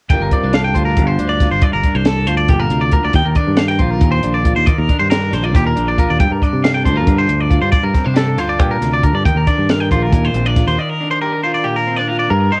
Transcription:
0.09 G1 G2 G3 D4 F4 A#4 G5, kick, closed hi-hat
0.20 G1 A#4
0.31 C4 D5, kick, closed hi-hat
0.43 C2 D4
0.53 A4 F5, snare, closed hi-hat
0.64 G5
0.74 D2 F4 C5, kick, closed hi-hat
0.85 A#4
0.97 G1 D3, kick, closed hi-hat
1.07 C5
1.19 D2 D4, closed hi-hat
1.29 D5
1.40 F4, kick, snare, closed hi-hat
1.51 G1 C5
1.62 G2 D5, kick, closed hi-hat
1.73 G1 A#4
1.83 D4, kick, closed hi-hat
1.95 C2 C5
2.05 A4, snare, closed hi-hat
2.27 D2 F4 C5, closed hi-hat
2.37 D5
2.48 G1 A#2 G4, kick, closed hi-hat
2.60 A#4
2.70 D2 C3, closed hi-hat
2.81 D5
2.91 D3 A#4, kick, closed hi-hat
3.04 D2 D5
3.13 D#2 D#3 G5, kick, closed hi-hat
3.25 D#2 A#4
3.35 D4 D5, kick, closed hi-hat
3.47 G2
3.57 G4 F5, snare, closed hi-hat
3.68 A#4 G5
3.79 A#1 F4 C5, kick, closed hi-hat
3.91 A#4
4.01 D#2 A#2, kick, closed hi-hat
4.12 C5
4.23 A#1 D4, closed hi-hat
4.34 D5
4.45 F4, kick, closed hi-hat
4.56 D#2 C5
4.66 D#3 D5, kick, closed hi-hat
4.78 D#2 A#4
4.89 D4, kick, closed hi-hat
4.99 G2 C5
5.10 G4 A#4, snare, closed hi-hat
5.21 A#4
5.31 A#1 D4 C5, snare, closed hi-hat
5.43 F4 D5
5.53 D#2 A#2 G4, kick, snare, closed hi-hat
5.67 A#4
5.76 A#1 D4, closed hi-hat
5.88 D5
5.98 F4 A#4, kick, closed hi-hat
6.10 D#2 D5
6.20 G2 G5, kick, closed hi-hat
6.31 G2 A#4
6.42 D4 D5, kick, closed hi-hat
6.53 C3
6.64 G4 F5, snare, closed hi-hat
6.74 A4 G5
6.85 D2 D4 C5, kick, closed hi-hat
6.96 F4 A#4
7.06 G2 D3, kick, closed hi-hat
7.18 C5
7.28 D2 D4, closed hi-hat
7.41 D5
7.50 F4, kick, closed hi-hat
7.62 G2 C5
7.72 G2 D5, kick, closed hi-hat
7.83 G2 A#4
7.94 C4, kick, snare, closed hi-hat
8.04 C3 D4 C5
8.14 G4 A4, snare, closed hi-hat
8.26 A4
8.37 D2 F4 C5, snare, closed hi-hat
8.49 D5
8.58 G2 A#2 G4, kick, closed hi-hat
8.71 A#4
8.81 D2 C3, snare, closed hi-hat
8.94 D5
9.03 D3 A#4, kick, closed hi-hat
9.13 G2 D5
9.25 D#2 D#3 G5, kick, closed hi-hat
9.35 D#2 A#4
9.47 D4 D5, kick, closed hi-hat
9.58 G2
9.69 A#4 F5, snare, closed hi-hat
9.80 G5
9.91 A#1 F4 C5, kick, closed hi-hat
10.03 A#4
10.12 D#2 A#2, kick, closed hi-hat
10.25 C5
10.34 A#1 C4, closed hi-hat
10.45 D4 D5
10.56 F4, kick, snare, closed hi-hat
10.67 D#2 C5
10.78 D#3 D5
10.89 A#4
11.00 D4
11.11 C5
11.21 G4 A#4
11.32 A#4
11.44 F4 C5
11.54 D5
11.64 A#2 G4
11.76 A#4
11.87 C4
11.96 D4 D5
12.08 F4 A#4
12.19 D5
12.29 G2 A#4
12.52 D#4 C5

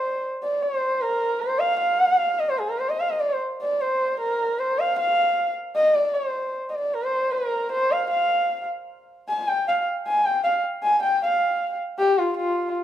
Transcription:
Already playing: C5
0.43 D5
0.63 C5
1.01 A#4
1.40 C5
1.59 F5
1.79 F5
2.39 D#5
2.49 C5
2.60 G#4
2.69 A#4
2.79 C5
2.89 D#5
3.00 F5
3.10 D#5
3.20 D5
3.30 C5
3.61 D5
3.81 C5
4.20 A#4
4.59 C5
4.79 F5
4.99 F5
5.76 D#5
5.95 D5
6.14 C5
6.69 D#5
6.75 D5
6.94 C5
7.33 A#4
7.72 C5
7.92 F5
8.10 F5
9.28 G#5
9.48 G5
9.68 F5
10.07 G#5
10.25 G5
10.44 F5
10.83 G#5
11.03 G5
11.23 F5
11.99 G4
12.18 F4
12.37 F4

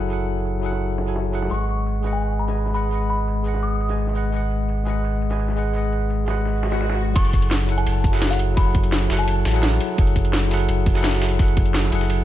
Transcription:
Already playing: F#1 F#3 E4 G#4 A4 F#5 G#5
0.07 F#3 E4 G#4, ride
0.12 A4 F#5
0.28 ride
0.36 ride
0.45 ride
0.60 F#3 E4 G#4, ride
0.64 A4 F#5
0.72 snare
0.81 ride
0.98 snare, ride
1.06 F#3 E4 G#4 A4 G#5
1.16 snare, ride
1.25 ride
1.32 F#3 E4 G#4 A4 F#5, snare, ride
1.42 snare, ride
1.48 G#1 G#3 G#4 B4 C#6, ride
1.53 D#5 F#5
1.69 ride
1.86 ride
1.95 ride
2.01 G#3 G#4 B4, snare, ride
2.06 D#5 F#5
2.13 G#5
2.22 ride
2.39 B5, ride
2.47 G#3 G#4 B4 D#5 G#5, snare
2.57 ride
2.66 snare
2.74 G#3 G#4 B4 D#5 F#5 B5, ride
2.89 G#3 G#4 B4, ride
2.94 D#5 F#5
3.10 B5, ride
3.19 ride
3.28 ride
3.43 G#3 G#4 B4, ride
3.47 D#5 F#5
3.54 snare
3.63 D#6, ride
3.81 ride
3.88 G#3 G#4 B4 D#5 G#5, snare
3.98 ride
4.07 snare
4.14 G#3 G#4 B4 D#5 F#5, ride
4.31 G#3 G#4 B4, ride
4.35 D#5 F#5
4.42 ride
4.51 ride
4.69 ride
4.78 ride
4.84 G#3 G#4 B4, snare, ride
4.88 D#5 F#5
5.04 ride
5.22 ride
5.29 G#3 G#4 B4 D#5 G#5, snare
5.39 ride
5.48 snare
5.56 G#3 G#4 B4 D#5 F#5, ride
5.72 G#3 G#4 B4, ride
5.76 D#5 F#5
5.93 ride
6.01 ride
6.10 ride
6.25 G#3 G#4 B4, snare, ride
6.29 D#5 F#5
6.37 ride
6.45 snare, ride, swell
6.63 snare, ride
6.70 G#3 G#4 B4 D#5 F#5, snare, ride
6.81 snare, ride
6.90 snare, ride
6.98 ride
7.13 F#1 F#3 E4 G#4 C#6, kick, closed hi-hat, crash, ride
7.18 A4 F#5
7.25 ride
7.33 kick, closed hi-hat, ride, shaker
7.42 closed hi-hat
7.51 snare, closed hi-hat, ride
7.60 ride
7.66 F#3 E4 F#4, closed hi-hat, shaker
7.70 A4 F#5
7.78 A5, closed hi-hat
7.87 F#1, closed hi-hat, ride, shaker
8.04 kick, closed hi-hat, ride, shaker
8.12 F#3 E4 G#4 A4 F#5, snare
8.22 snare, closed hi-hat, ride
8.31 F#5, snare
8.39 closed hi-hat, ride, shaker
8.54 F#1 F#3 E4 G#4 B5, kick, closed hi-hat, ride
8.59 A4 F#5
8.75 kick, closed hi-hat, ride, shaker
8.84 closed hi-hat, ride
8.92 snare, closed hi-hat, ride
9.07 F#1 F#3 E4 F#4, snare, open hi-hat, ride, shaker
9.12 A4 F#5
9.19 A5, closed hi-hat, ride
9.28 closed hi-hat, ride, shaker
9.45 A1, snare, closed hi-hat, ride, shaker
9.53 F#3 E4 G#4 A4 F#5, ride
9.63 snare, closed hi-hat, ride
9.81 closed hi-hat, ride, shaker
9.96 F#1 F#3 E4 G#4, kick, closed hi-hat, ride
10.00 A4 F#5
10.07 ride
10.16 kick, closed hi-hat, ride, shaker
10.25 closed hi-hat
10.33 snare, closed hi-hat, ride
10.42 ride
10.48 F#3 E4 G#4, snare, closed hi-hat, ride, shaker
10.53 A4 F#5
10.60 closed hi-hat
10.69 F#1, closed hi-hat, ride, shaker
10.86 kick, closed hi-hat, ride, shaker
10.94 F#3 E4 G#4 A4 F#5, snare
11.04 snare, closed hi-hat, ride
11.13 snare
11.22 snare, closed hi-hat, ride, shaker
11.31 ride
11.37 F#1 F#3 E4 G#4, kick, snare, closed hi-hat, ride
11.41 A4 F#5
11.48 closed hi-hat
11.57 kick, closed hi-hat, ride, shaker
11.66 closed hi-hat
11.74 snare, closed hi-hat, ride
11.83 snare
11.89 F#1 F#3 E4 G#4, open hi-hat, ride, shaker
11.94 A4 F#5
12.01 snare, closed hi-hat
12.10 closed hi-hat, ride, shaker

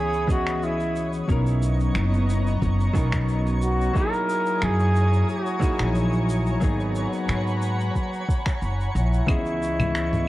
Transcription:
Already playing: C#2 E3 B3 C#4 G#4 C#5 B5 C#6 D#6
0.13 shaker
0.27 E3 B3 C#4 F#4 G#4 D#5, kick, shaker
0.46 finger snap, shaker
0.62 E4, shaker
0.80 shaker
0.96 shaker
1.13 shaker
1.27 B1 F#3 B3 C#4 D#4 A#4 D#5 A#5 C#6, kick, shaker
1.46 shaker
1.62 shaker
1.80 shaker
1.95 F#1, finger snap, shaker
2.13 shaker
2.29 shaker
2.47 shaker
2.62 F#1, kick, shaker
2.80 shaker
2.93 B1 F#3 B3 C#4 D#4 A#4, kick, shaker
3.12 finger snap, kick, shaker
3.28 shaker
3.47 shaker
3.62 F#4, shaker
3.81 shaker
3.93 F#3 A#3 D#4 E4 G#4 A#4 G#5 A#5 D#6, kick, shaker
4.14 shaker
4.29 shaker
4.46 shaker
4.62 F#2 G#4, finger snap, shaker
4.80 shaker
4.96 shaker
5.13 shaker
5.29 F#4, shaker
5.46 shaker
5.60 F#3 A#3 D#4 E4, kick, shaker
5.64 G#4
5.80 A#1, finger snap, shaker
5.95 shaker
6.13 shaker
6.29 shaker
6.46 shaker
6.60 G#1 F#3 A#3 B3 D#4 G#4 F#5 B5, kick, shaker
6.80 shaker
6.95 shaker
7.13 shaker
7.28 G#2, finger snap, shaker
7.47 shaker
7.62 shaker
7.80 shaker
7.95 kick, shaker
8.14 shaker
8.29 kick, shaker
8.46 finger snap, kick, shaker
8.62 F#1, shaker
8.81 shaker
8.95 A#1 E4, shaker
9.13 shaker
9.27 C#2 E3 B3 C#4 G#4 D#5 C#6, kick, claves, shaker
9.46 shaker
9.62 shaker
9.79 high conga, low conga, claves, shaker
9.95 finger snap, shaker
10.13 low conga, shaker

